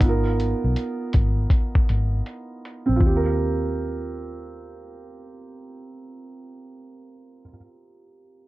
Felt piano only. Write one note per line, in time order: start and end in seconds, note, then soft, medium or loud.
0.00 2.93 B3 medium
0.00 2.96 D#4 medium
0.04 2.95 F4 medium
0.09 3.01 A#4 medium
2.86 7.39 C4 medium
2.96 7.45 F4 medium
3.06 7.49 G4 medium
3.16 7.55 A#4 medium